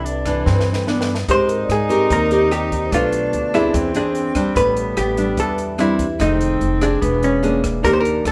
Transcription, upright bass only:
0.00 0.42 C2 medium
0.46 1.24 G2 medium
1.28 1.67 G#2 medium
1.69 2.07 G#2 medium
2.11 2.89 D#2 medium
2.92 3.31 B1 medium
3.33 3.71 D2 medium
3.74 4.52 E2 medium
4.56 4.94 A1 medium
4.97 5.35 A1 medium
5.38 6.16 E2 medium
6.20 6.58 F1 medium
6.61 6.99 F1 medium
7.02 7.80 E1 medium
7.85 8.22 D#2 medium
8.25 8.32 D#2 medium

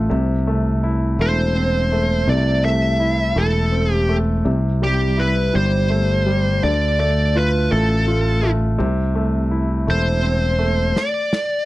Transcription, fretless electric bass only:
0.11 1.16 C2 medium
1.19 2.24 E1 medium
2.28 3.32 C2 medium
3.36 4.42 E1 medium
4.45 5.51 C2 medium
5.55 6.60 G1 medium
6.64 7.68 D2 medium
7.72 8.76 A1 medium
8.80 9.90 C2 medium
9.88 10.92 E1 medium

